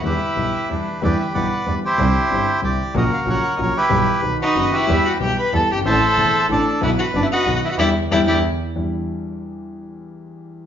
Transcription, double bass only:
\new Staff \with { instrumentName = "Double bass" } { \clef bass \time 3/4 \key e \minor \tempo 4 = 186 e,8 r8 b,,8 r8 e,8 r8 | e,8 r8 b,,8 r8 e,8 r8 | c,8 r8 g,,8 r8 c,8 r8 | ais,,8 r8 ais,,8 r8 ais,,8 r8 |
b,,8 r8 b,,8 r8 fis,,8 r8 | e,8 r8 b,,8 r8 e,8 g,,8 | a,,8 r8 e,,8 r8 a,,8 r8 | b,,8 r8 fis,,8 r8 b,,8 r8 |
e,8 r8 e,8 e,8 r4 | e,8 r2 r8 | r2. | }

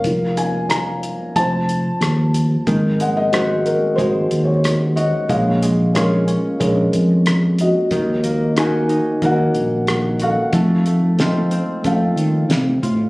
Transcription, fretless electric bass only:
\new Staff \with { instrumentName = "Fretless electric bass" } { \clef bass \time 4/4 \key aes \mixolydian \tempo 4 = 92 f,,2 f,,4 ees,4 | aes,,2 aes,,8 ees,4. | bes,,2 bes,,8 f,4. | ees,2 ees,8 bes,,4. |
f,2 f,8 ees8 c8 a,8 | }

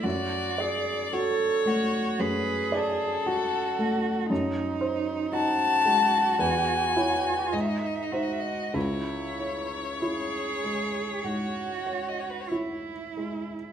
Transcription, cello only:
\new Staff \with { instrumentName = "Cello" } { \time 4/4 \key cis \minor \tempo 4 = 54 fis'8 gis'8 a'8 fis'8 gis'4 fis'4 | dis'4 fis'2 dis'8 fis'8 | e'4 gis'4 fis'4 e'4 | }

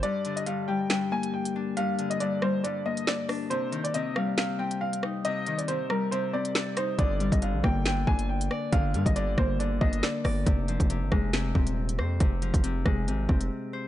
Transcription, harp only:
\new Staff \with { instrumentName = "Harp" } { \clef bass \time 4/4 \key g \phrygian \tempo 4 = 138 g,8 d8 g,8 g8 g,8 bes4 d'8 | g,8 d8 g,8 g8 g,8 bes4 d'8 | c8 ees8 c8 g8 c8 c'4 ees'8 | c8 ees8 c8 g8 c8 c'4 ees'8 |
d8 g8 d8 bes8 d8 d'4 d''8 | d8 g8 d8 bes8 d8 d'4 d''8 | c8 f8 c8 aes8 c8 c'4 c''8 | c8 f8 c8 aes8 c8 c'4 c''8 | }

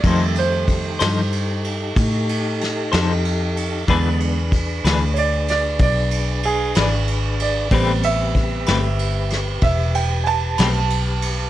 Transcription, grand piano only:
<<
  \new Staff \with { instrumentName = "Grand piano" } { \time 12/8 \key a \minor \tempo 4. = 63 d''8 c''2 r2. r8 | r2 <cis'' d''>8 d''8 d''4 gis'8 d''4 d''8~ | d''8 e''2 r8 e''8 g''8 <gis'' a''>2 | }
  \new Staff \with { instrumentName = "Grand piano" } { \clef bass \time 12/8 \key a \minor <ees g a>4. r1 r8 | <d gis b>8 r1 r4. | <g b c'>1. | }
>>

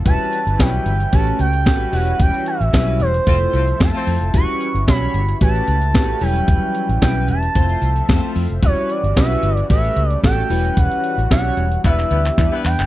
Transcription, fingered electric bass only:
\new Staff \with { instrumentName = "Fingered electric bass" } { \clef bass \time 4/4 \key e \dorian \tempo 4 = 112 e,,16 r8 g,,16 b,,8 g,,8 a,,8 cis,8 a,,8 e,,8 | e,,16 r8 a,,16 b,,8 e,,8 f,,8 c,8 f,16 r16 f,16 f,,16 | e,,16 r8 g,,16 b,,8 g,,8 a,,8 cis,8 a,,8 e,,8 | e,,16 r8 a,,16 b,,8 e,,8 f,,8 c,8 f,16 r16 f,16 f,,16 |
e,,16 r8 g,,16 b,,8 g,,8 a,,8 cis,8 a,,8 e,,8 | e,,16 r8 a,,16 b,,8 e,,8 e,,8 d,8 e,16 r16 e,16 fis,,16 | }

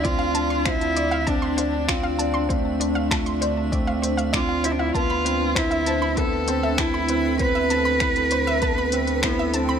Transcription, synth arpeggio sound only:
\new Staff \with { instrumentName = "Synth arpeggio sound" } { \time 4/4 \key d \dorian \tempo 4 = 98 d''16 f''16 a''16 c'''16 c''16 r16 d''16 f''16 a''16 c'''16 c''16 r16 d''16 f''16 a''16 c'''16 | c''16 r16 d''16 f''16 a''16 c'''16 c''16 r16 d''16 f''16 c''16 f''16 d''16 f''16 c''16 f''16 | a''16 b''16 b'16 r16 c''16 e''16 a''16 b''16 b'16 r16 c''16 e''16 a''16 b''16 b'16 r16 | c''16 e''16 a''16 b''16 b'16 r16 c''16 e''16 a''16 b''16 b'16 r16 c''16 e''16 a''16 b''16 | }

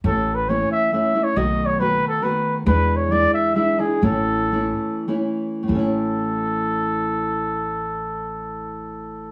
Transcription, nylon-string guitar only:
\new Staff \with { instrumentName = "Nylon-string guitar" } { \time 3/4 \key a \major \tempo 4 = 124 <a, e a cis' e'>4 <e a cis' e'>4 <e a cis' e'>8 <a cis' e'>8 | <b, dis a b fis'>4 <dis a b fis'>4 <dis a b fis'>4 | <e, b, e gis d' e'>4 <e gis d' e'>4 <e gis d' e'>8 <e gis d' e'>8 | <a, e a cis' e'>4 <e a cis' e'>4 <e a cis' e'>4 |
<a, e a cis' e'>2.~ | <a, e a cis' e'>2. | }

